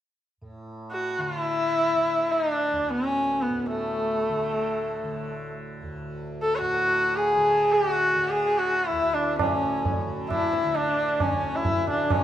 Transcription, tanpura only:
0.41 3.50 A2 soft
1.18 1.94 D3 soft
1.94 4.29 D3 soft
2.72 5.82 D2 soft
3.50 6.60 A2 soft
4.29 5.03 D3 soft
5.03 7.36 D3 medium
5.82 8.92 D2 medium
6.61 9.39 A2 medium
7.36 8.14 D3 medium
8.14 10.04 D3 medium
8.92 11.26 D2 medium
9.39 11.86 A2 medium
10.04 10.64 D3 soft
10.64 12.24 D3 medium
11.26 12.24 D2 medium
11.87 12.24 A2 soft

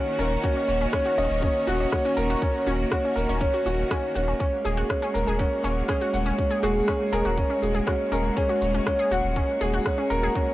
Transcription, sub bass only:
0.19 0.36 D#1 medium
0.68 0.86 D#1 medium
1.18 1.27 D#1 loud
1.30 1.48 D#1 loud
1.67 1.85 D#1 medium
2.17 2.34 D#1 loud
2.67 2.84 D#1 loud
3.16 3.25 D#1 loud
3.28 3.46 D#1 loud
3.66 3.83 D#1 medium
4.16 4.33 D#1 medium
4.65 4.82 D#1 loud
5.15 5.23 D#1 loud
5.27 5.44 D#1 loud
5.64 5.81 D#1 medium
6.13 6.31 D#1 medium
6.63 6.81 D#1 loud
7.12 7.21 D#1 loud
7.25 7.43 D#1 loud
7.62 7.80 D#1 medium
8.12 8.29 D#1 medium
8.61 8.79 D#1 loud
9.11 9.20 D#1 loud
9.23 9.41 D#1 loud
9.61 9.78 D#1 medium
10.10 10.28 D#1 medium

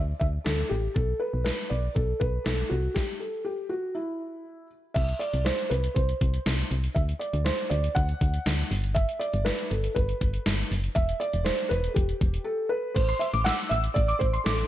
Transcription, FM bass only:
0.00 0.14 D2 loud
0.21 0.39 D2 loud
0.46 0.64 D2 loud
0.71 0.89 A1 medium
0.96 1.14 B1 loud
1.34 1.51 B1 medium
1.71 1.89 B1 loud
1.96 2.14 B1 loud
2.21 2.39 B1 loud
2.46 2.64 B1 loud
2.71 2.89 C2 loud
4.96 5.14 C2 loud
5.34 5.51 C2 medium
5.71 5.89 C2 loud
5.96 6.14 C2 loud
6.21 6.39 C2 loud
6.46 6.64 C2 loud
6.71 6.89 C2 medium
6.96 7.14 D2 loud
7.33 7.51 D2 loud
7.71 7.89 D2 loud
7.96 8.14 D2 loud
8.21 8.39 D2 loud
8.46 8.64 D2 loud
8.71 9.06 G1 loud
9.34 9.51 G1 loud
9.71 9.89 G1 loud
9.96 10.14 G1 loud
10.21 10.39 G1 loud
10.46 10.64 G1 loud
10.71 10.89 F#1 loud
10.96 11.14 E1 loud
11.34 11.51 E1 loud
11.71 11.89 E1 loud
11.96 12.14 E1 loud
12.21 12.39 E1 loud
12.96 13.14 A1 loud
13.34 13.51 A1 loud
13.71 13.89 A1 loud
13.96 14.14 A1 loud
14.21 14.39 A1 loud
14.46 14.64 A1 loud

